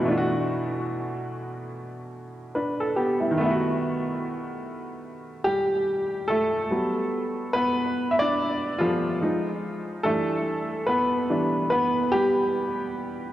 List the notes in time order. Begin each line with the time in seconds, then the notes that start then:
Already playing: D#4 B4
0.00 B2 E3
0.05 A3 D4
0.11 F4
0.17 F#4
2.55 D4 B4
2.80 A4
2.96 B3 G4
3.20 G3 E4
3.31 D#3
3.37 A3 B3
3.44 E4
3.50 F#4
5.44 G3 G4
6.28 A3 A4
6.71 F#3 G3 B3
7.53 B3 B4
8.11 E5
8.19 D4 D5
8.78 F3 G3 B3 F4 A4
9.21 F3 G#3 D#4
10.03 E3 G3 A3 D4 A4
10.87 B3 B4
11.30 E3 G3 D4
11.70 B3 B4
12.11 G3 G4